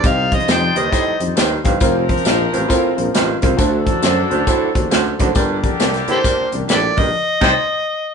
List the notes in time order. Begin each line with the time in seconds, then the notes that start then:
0.03 C2 C3 G3 D#4 G4 C5 D#5 F5, kick, closed hi-hat, tambourine, muted conga
0.31 D#4 G4 C5 D#5, kick, closed hi-hat, high conga
0.40 closed hi-hat, high conga
0.48 F2 D#4 G4 C5 D#5 G5, snare, closed hi-hat, tambourine, muted conga, high conga
0.75 D#2 G2 D#4 G4 C5 D#5, closed hi-hat, low conga
0.91 A2 D#4 G4 C5 D#5, kick, closed hi-hat, tambourine
1.07 F2
1.20 F2 D#4 G4 C5 D#5, closed hi-hat, muted conga, high conga
1.28 high conga
1.36 D#2 G2 D#4 G4 C5 D5, snare, closed hi-hat, tambourine, muted conga
1.64 G1 G2 D#4 G4 C5 F5, kick, closed hi-hat, high conga, low conga
1.80 F1 F2 F3 C4 F4 A#4 C5, kick, closed hi-hat, tambourine
2.08 C4 F4 A#4 C5, kick, closed hi-hat, muted conga, high conga
2.17 closed hi-hat, high conga
2.25 A#1 C4 F4 A#4 C5 D#5, snare, closed hi-hat, tambourine, high conga
2.53 A1 G2 C4 F4 A#4 C5, closed hi-hat, muted conga, low conga
2.69 A2 C4 F4 A#4 C5, kick, closed hi-hat, tambourine, muted conga
2.84 A#1
2.96 A#1 C4 F4 A#4 C5, closed hi-hat, muted conga, high conga
3.06 high conga
3.14 A1 G2 C4 F4 A#4 C5 D#5, snare, closed hi-hat, tambourine, muted conga
3.42 C2 F2 C4 F4 A#4 C5, kick, closed hi-hat, high conga, low conga
3.57 D2 D3 F#3 D4 F#4 A4 C5, kick, closed hi-hat, tambourine, muted conga
3.85 D4 F#4 A4 C5, kick, closed hi-hat, high conga
3.95 high conga
4.01 F#2 D4 F#4 A4 C5, snare, closed hi-hat, tambourine, high conga
4.30 D2 F#2 D4 F#4 A4 C5, closed hi-hat, low conga
4.47 A2 D4 F#4 A4 C5, kick, closed hi-hat, tambourine
4.61 D#2
4.75 D#2 D4 F#4 A4 C5, kick, closed hi-hat, high conga
4.83 high conga
4.91 D2 F#2 D4 F#4 A4 C5, snare, closed hi-hat, tambourine, muted conga
5.19 F#1 D2 D4 F#4 A4 C5, kick, closed hi-hat, high conga, low conga
5.35 G1 G2 D3 A#3 D4 G4 A#4 D5, kick, closed hi-hat, tambourine, muted conga
5.63 D4 G4 A#4 D5, kick, closed hi-hat, muted conga, high conga
5.72 high conga
5.79 C2 D4 G4 A#4 D5, snare, closed hi-hat, tambourine, high conga
5.94 snare, closed hi-hat
6.08 A2 D4 G4 A4 A#4 C5 D5, closed hi-hat, muted conga, low conga
6.24 A#2 D4 G4 A#4 D5, kick, closed hi-hat, tambourine, muted conga
6.38 C2
6.52 C2 D4 G4 A#4 D5, closed hi-hat, high conga
6.60 high conga
6.68 A#1 A2 D4 G4 A4 A#4 B4 D5, snare, closed hi-hat, tambourine, muted conga
6.96 A#1 G2 D4 G4 A#4 D5 D#5, kick, open hi-hat, muted conga, high conga, low conga
7.41 C2 C3 G3 D#4 G4 C5, kick, snare, crash